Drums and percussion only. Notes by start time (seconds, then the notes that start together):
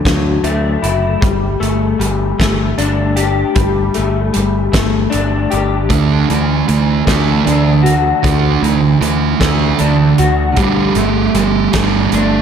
0.05 kick, snare, closed hi-hat
0.44 closed hi-hat
0.84 closed hi-hat
1.22 kick, closed hi-hat
1.63 closed hi-hat
2.01 closed hi-hat
2.40 kick, snare, closed hi-hat
2.78 closed hi-hat
3.17 closed hi-hat
3.56 kick, closed hi-hat
3.94 closed hi-hat
4.34 closed hi-hat
4.73 kick, snare, closed hi-hat
5.12 closed hi-hat
5.52 closed hi-hat
5.90 kick, closed hi-hat
6.30 closed hi-hat
6.69 closed hi-hat
7.07 kick, snare, closed hi-hat
7.47 closed hi-hat
7.86 closed hi-hat
8.24 kick, closed hi-hat
8.64 closed hi-hat
9.02 closed hi-hat
9.41 kick, snare, closed hi-hat
9.79 closed hi-hat
10.18 closed hi-hat
10.56 kick, closed hi-hat
10.95 closed hi-hat
11.35 closed hi-hat
11.73 kick, snare, closed hi-hat
12.12 closed hi-hat